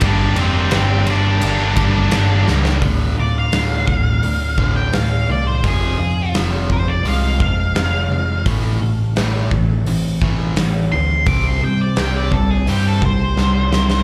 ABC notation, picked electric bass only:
X:1
M:4/4
L:1/8
Q:1/4=85
K:Gm
V:1 name="Picked electric bass" clef=bass
G,,, F,,, G,,, G,,, G,,, G,,, G,,, ^C,, | [K:Dm] D,,, D,,, D,,, D,,, D,,, D,,, D,,, C,, | F,,, F,, F,,, F,,, C,, F,,, F,,, F,,, | A,,, A,,, A,,, A,,, A,,, A,,, A,,, D,, |
C,, C, C,, C,, G,, C,, C,, C,, |]